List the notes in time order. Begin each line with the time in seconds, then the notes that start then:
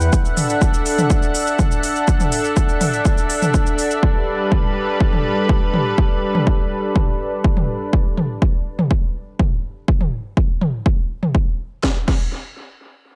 Already playing: F#5
0.01 E2, shaker
0.13 D4 A4 E5, kick, shaker
0.25 shaker
0.37 mid tom, open hi-hat, shaker
0.50 shaker
0.61 kick, shaker
0.74 shaker
0.86 open hi-hat, shaker
0.98 mid tom, shaker
1.10 kick, shaker
1.23 shaker
1.35 open hi-hat, shaker
1.47 shaker
1.59 kick, mid tom, shaker
1.71 shaker
1.83 open hi-hat, shaker
1.96 shaker
2.08 kick, shaker
2.20 mid tom, shaker
2.32 open hi-hat, shaker
2.44 shaker
2.56 kick, shaker
2.69 shaker
2.81 mid tom, open hi-hat, shaker
2.93 shaker
3.05 kick, shaker
3.18 shaker
3.30 open hi-hat, shaker
3.42 mid tom, shaker
3.54 kick, shaker
3.67 shaker
3.78 open hi-hat, shaker
3.91 shaker
4.03 G3 B4, kick
4.52 kick, mid tom
5.00 kick
5.13 mid tom
5.49 kick
5.74 mid tom
5.98 kick
6.35 mid tom
6.47 kick
6.96 kick, mid tom
7.44 kick
7.57 mid tom
7.93 kick
8.17 mid tom
8.42 kick
8.79 mid tom
8.91 kick
9.39 kick, mid tom
9.88 kick
10.01 mid tom
10.37 kick
10.61 mid tom
10.86 kick
11.23 mid tom
11.35 kick
11.83 kick, snare
12.08 kick, crash